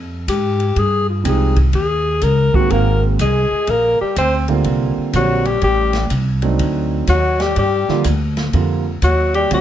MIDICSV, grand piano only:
0, 0, Header, 1, 2, 480
1, 0, Start_track
1, 0, Tempo, 486224
1, 1714, Time_signature, 4, 2, 24, 8
1, 9486, End_track
2, 0, Start_track
2, 0, Title_t, "Grand piano"
2, 0, Program_c, 0, 0
2, 1221, Note_on_c, 0, 53, 65
2, 1229, Note_on_c, 0, 56, 64
2, 1232, Note_on_c, 0, 60, 58
2, 1235, Note_on_c, 0, 63, 64
2, 1243, Note_on_c, 0, 67, 75
2, 1512, Note_off_c, 0, 53, 0
2, 1516, Note_off_c, 0, 56, 0
2, 1518, Note_off_c, 0, 60, 0
2, 1519, Note_off_c, 0, 63, 0
2, 1523, Note_off_c, 0, 67, 0
2, 2498, Note_on_c, 0, 51, 65
2, 2506, Note_on_c, 0, 56, 62
2, 2509, Note_on_c, 0, 58, 64
2, 2510, Note_on_c, 0, 60, 65
2, 2511, Note_on_c, 0, 66, 80
2, 3115, Note_off_c, 0, 51, 0
2, 3119, Note_off_c, 0, 56, 0
2, 3120, Note_off_c, 0, 58, 0
2, 3121, Note_off_c, 0, 60, 0
2, 3121, Note_off_c, 0, 66, 0
2, 4427, Note_on_c, 0, 50, 74
2, 4429, Note_on_c, 0, 55, 64
2, 4429, Note_on_c, 0, 58, 71
2, 4438, Note_on_c, 0, 60, 62
2, 4440, Note_on_c, 0, 65, 77
2, 5038, Note_off_c, 0, 50, 0
2, 5039, Note_off_c, 0, 55, 0
2, 5039, Note_off_c, 0, 58, 0
2, 5044, Note_off_c, 0, 60, 0
2, 5045, Note_off_c, 0, 65, 0
2, 5075, Note_on_c, 0, 50, 65
2, 5077, Note_on_c, 0, 55, 59
2, 5081, Note_on_c, 0, 58, 56
2, 5085, Note_on_c, 0, 60, 54
2, 5089, Note_on_c, 0, 67, 72
2, 5357, Note_off_c, 0, 50, 0
2, 5358, Note_off_c, 0, 55, 0
2, 5360, Note_off_c, 0, 58, 0
2, 5363, Note_off_c, 0, 60, 0
2, 5364, Note_off_c, 0, 67, 0
2, 6341, Note_on_c, 0, 62, 66
2, 6344, Note_on_c, 0, 54, 63
2, 6349, Note_on_c, 0, 57, 64
2, 6349, Note_on_c, 0, 60, 63
2, 6360, Note_on_c, 0, 63, 70
2, 6955, Note_off_c, 0, 62, 0
2, 6956, Note_off_c, 0, 54, 0
2, 6958, Note_off_c, 0, 60, 0
2, 6959, Note_off_c, 0, 57, 0
2, 6964, Note_off_c, 0, 63, 0
2, 7789, Note_on_c, 0, 50, 77
2, 7790, Note_on_c, 0, 53, 71
2, 7799, Note_on_c, 0, 55, 74
2, 7800, Note_on_c, 0, 58, 72
2, 7804, Note_on_c, 0, 65, 89
2, 7935, Note_off_c, 0, 50, 0
2, 7936, Note_off_c, 0, 53, 0
2, 7940, Note_off_c, 0, 55, 0
2, 7940, Note_off_c, 0, 58, 0
2, 7942, Note_off_c, 0, 65, 0
2, 8427, Note_on_c, 0, 50, 67
2, 8430, Note_on_c, 0, 53, 56
2, 8434, Note_on_c, 0, 55, 61
2, 8434, Note_on_c, 0, 58, 64
2, 8441, Note_on_c, 0, 65, 70
2, 8713, Note_off_c, 0, 50, 0
2, 8714, Note_off_c, 0, 53, 0
2, 8716, Note_off_c, 0, 55, 0
2, 8717, Note_off_c, 0, 58, 0
2, 8720, Note_off_c, 0, 65, 0
2, 9388, Note_on_c, 0, 50, 72
2, 9395, Note_on_c, 0, 53, 63
2, 9397, Note_on_c, 0, 57, 64
2, 9402, Note_on_c, 0, 60, 63
2, 9410, Note_on_c, 0, 65, 76
2, 9486, Note_off_c, 0, 50, 0
2, 9486, Note_off_c, 0, 53, 0
2, 9486, Note_off_c, 0, 57, 0
2, 9486, Note_off_c, 0, 60, 0
2, 9486, Note_off_c, 0, 65, 0
2, 9486, End_track
0, 0, End_of_file